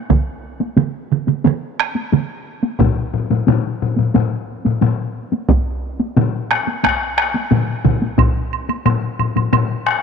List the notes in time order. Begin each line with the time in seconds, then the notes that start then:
0.10 taiko, taiko mid, taiko high
0.60 taiko high
0.77 taiko mid, taiko high
1.12 taiko mid
1.27 taiko mid, taiko high
1.44 taiko mid, taiko high
1.80 taiko rim
1.95 taiko high
2.12 taiko mid, taiko high
2.63 taiko high
2.79 taiko, taiko low-mid, taiko high
3.14 taiko low-mid
3.30 taiko low-mid, taiko high
3.47 taiko low-mid, taiko high
3.82 taiko low-mid
3.97 taiko low-mid, taiko high
4.14 taiko low-mid, taiko high
4.65 taiko low-mid, taiko high
4.81 taiko low-mid, taiko high
5.32 taiko high
5.49 taiko, taiko high
6.00 taiko high
6.17 taiko low-mid, taiko mid, taiko high
6.51 taiko rim
6.67 taiko high
6.84 taiko rim, taiko, taiko high
7.18 taiko rim
7.34 taiko high
7.51 taiko low-mid, taiko mid, taiko high
7.85 taiko, taiko low-mid, taiko mid
8.02 taiko high
8.18 taiko, taiko low-mid, taiko high, high woodblock
8.53 high woodblock
8.69 taiko high, high woodblock
8.86 taiko low-mid, taiko high, high woodblock
9.19 taiko low-mid, high woodblock
9.36 taiko low-mid, taiko high, high woodblock
9.53 taiko low-mid, taiko high, high woodblock
9.86 taiko rim, high woodblock